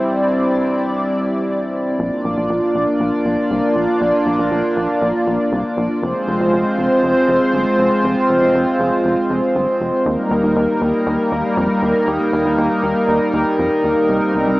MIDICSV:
0, 0, Header, 1, 3, 480
1, 0, Start_track
1, 0, Tempo, 504202
1, 1896, Time_signature, 4, 2, 24, 8
1, 13898, End_track
2, 0, Start_track
2, 0, Title_t, "Analog synth pad"
2, 0, Program_c, 0, 89
2, 0, Note_on_c, 0, 55, 77
2, 0, Note_on_c, 0, 60, 70
2, 0, Note_on_c, 0, 64, 72
2, 0, Note_on_c, 0, 74, 88
2, 1858, Note_off_c, 0, 55, 0
2, 1858, Note_off_c, 0, 60, 0
2, 1858, Note_off_c, 0, 64, 0
2, 1878, Note_off_c, 0, 74, 0
2, 1896, Note_on_c, 0, 62, 72
2, 1896, Note_on_c, 0, 74, 85
2, 1897, Note_on_c, 0, 58, 82
2, 1897, Note_on_c, 0, 65, 76
2, 5698, Note_off_c, 0, 62, 0
2, 5698, Note_off_c, 0, 65, 0
2, 5698, Note_off_c, 0, 74, 0
2, 5699, Note_off_c, 0, 58, 0
2, 5737, Note_on_c, 0, 56, 81
2, 5737, Note_on_c, 0, 60, 73
2, 5737, Note_on_c, 0, 65, 74
2, 5737, Note_on_c, 0, 72, 92
2, 9538, Note_off_c, 0, 65, 0
2, 9539, Note_off_c, 0, 56, 0
2, 9539, Note_off_c, 0, 60, 0
2, 9539, Note_off_c, 0, 72, 0
2, 9577, Note_on_c, 0, 55, 80
2, 9577, Note_on_c, 0, 58, 75
2, 9577, Note_on_c, 0, 63, 72
2, 9577, Note_on_c, 0, 70, 93
2, 13379, Note_off_c, 0, 58, 0
2, 13417, Note_on_c, 0, 60, 74
2, 13898, Note_off_c, 0, 55, 0
2, 13898, Note_off_c, 0, 60, 0
2, 13898, Note_off_c, 0, 63, 0
2, 13898, Note_off_c, 0, 70, 0
2, 13898, End_track
3, 0, Start_track
3, 0, Title_t, "Analog synth bass"
3, 0, Program_c, 1, 38
3, 1897, Note_on_c, 1, 34, 111
3, 2005, Note_off_c, 1, 34, 0
3, 2137, Note_on_c, 1, 34, 106
3, 2245, Note_off_c, 1, 34, 0
3, 2257, Note_on_c, 1, 34, 100
3, 2365, Note_off_c, 1, 34, 0
3, 2377, Note_on_c, 1, 34, 103
3, 2485, Note_off_c, 1, 34, 0
3, 2617, Note_on_c, 1, 34, 100
3, 2725, Note_off_c, 1, 34, 0
3, 2857, Note_on_c, 1, 34, 103
3, 2965, Note_off_c, 1, 34, 0
3, 3097, Note_on_c, 1, 34, 100
3, 3205, Note_off_c, 1, 34, 0
3, 3338, Note_on_c, 1, 36, 99
3, 3445, Note_off_c, 1, 36, 0
3, 3577, Note_on_c, 1, 34, 94
3, 3685, Note_off_c, 1, 34, 0
3, 3817, Note_on_c, 1, 34, 110
3, 3925, Note_off_c, 1, 34, 0
3, 4057, Note_on_c, 1, 34, 93
3, 4165, Note_off_c, 1, 34, 0
3, 4176, Note_on_c, 1, 34, 94
3, 4284, Note_off_c, 1, 34, 0
3, 4296, Note_on_c, 1, 34, 103
3, 4404, Note_off_c, 1, 34, 0
3, 4536, Note_on_c, 1, 34, 106
3, 4645, Note_off_c, 1, 34, 0
3, 4775, Note_on_c, 1, 34, 108
3, 4884, Note_off_c, 1, 34, 0
3, 5015, Note_on_c, 1, 34, 99
3, 5124, Note_off_c, 1, 34, 0
3, 5256, Note_on_c, 1, 36, 94
3, 5364, Note_off_c, 1, 36, 0
3, 5496, Note_on_c, 1, 34, 98
3, 5604, Note_off_c, 1, 34, 0
3, 5736, Note_on_c, 1, 29, 110
3, 5844, Note_off_c, 1, 29, 0
3, 5975, Note_on_c, 1, 29, 104
3, 6084, Note_off_c, 1, 29, 0
3, 6096, Note_on_c, 1, 29, 99
3, 6204, Note_off_c, 1, 29, 0
3, 6216, Note_on_c, 1, 29, 107
3, 6324, Note_off_c, 1, 29, 0
3, 6456, Note_on_c, 1, 29, 97
3, 6565, Note_off_c, 1, 29, 0
3, 6695, Note_on_c, 1, 29, 98
3, 6804, Note_off_c, 1, 29, 0
3, 6935, Note_on_c, 1, 29, 101
3, 7044, Note_off_c, 1, 29, 0
3, 7175, Note_on_c, 1, 31, 92
3, 7284, Note_off_c, 1, 31, 0
3, 7415, Note_on_c, 1, 29, 98
3, 7524, Note_off_c, 1, 29, 0
3, 7656, Note_on_c, 1, 29, 114
3, 7764, Note_off_c, 1, 29, 0
3, 7895, Note_on_c, 1, 29, 97
3, 8004, Note_off_c, 1, 29, 0
3, 8016, Note_on_c, 1, 29, 93
3, 8124, Note_off_c, 1, 29, 0
3, 8136, Note_on_c, 1, 29, 108
3, 8244, Note_off_c, 1, 29, 0
3, 8376, Note_on_c, 1, 29, 107
3, 8484, Note_off_c, 1, 29, 0
3, 8615, Note_on_c, 1, 29, 105
3, 8724, Note_off_c, 1, 29, 0
3, 8855, Note_on_c, 1, 29, 102
3, 8964, Note_off_c, 1, 29, 0
3, 9095, Note_on_c, 1, 31, 97
3, 9204, Note_off_c, 1, 31, 0
3, 9335, Note_on_c, 1, 29, 95
3, 9444, Note_off_c, 1, 29, 0
3, 9575, Note_on_c, 1, 39, 107
3, 9684, Note_off_c, 1, 39, 0
3, 9815, Note_on_c, 1, 39, 109
3, 9924, Note_off_c, 1, 39, 0
3, 9935, Note_on_c, 1, 39, 90
3, 10044, Note_off_c, 1, 39, 0
3, 10055, Note_on_c, 1, 39, 107
3, 10164, Note_off_c, 1, 39, 0
3, 10294, Note_on_c, 1, 39, 102
3, 10404, Note_off_c, 1, 39, 0
3, 10534, Note_on_c, 1, 39, 113
3, 10644, Note_off_c, 1, 39, 0
3, 10775, Note_on_c, 1, 39, 102
3, 10884, Note_off_c, 1, 39, 0
3, 11015, Note_on_c, 1, 41, 107
3, 11124, Note_off_c, 1, 41, 0
3, 11256, Note_on_c, 1, 39, 96
3, 11364, Note_off_c, 1, 39, 0
3, 11495, Note_on_c, 1, 39, 113
3, 11604, Note_off_c, 1, 39, 0
3, 11736, Note_on_c, 1, 39, 111
3, 11845, Note_off_c, 1, 39, 0
3, 11856, Note_on_c, 1, 39, 94
3, 11965, Note_off_c, 1, 39, 0
3, 11976, Note_on_c, 1, 39, 111
3, 12085, Note_off_c, 1, 39, 0
3, 12217, Note_on_c, 1, 39, 98
3, 12325, Note_off_c, 1, 39, 0
3, 12456, Note_on_c, 1, 39, 108
3, 12564, Note_off_c, 1, 39, 0
3, 12697, Note_on_c, 1, 39, 104
3, 12805, Note_off_c, 1, 39, 0
3, 12937, Note_on_c, 1, 41, 98
3, 13045, Note_off_c, 1, 41, 0
3, 13176, Note_on_c, 1, 39, 89
3, 13285, Note_off_c, 1, 39, 0
3, 13416, Note_on_c, 1, 36, 102
3, 13524, Note_off_c, 1, 36, 0
3, 13656, Note_on_c, 1, 36, 97
3, 13764, Note_off_c, 1, 36, 0
3, 13776, Note_on_c, 1, 36, 97
3, 13884, Note_off_c, 1, 36, 0
3, 13898, End_track
0, 0, End_of_file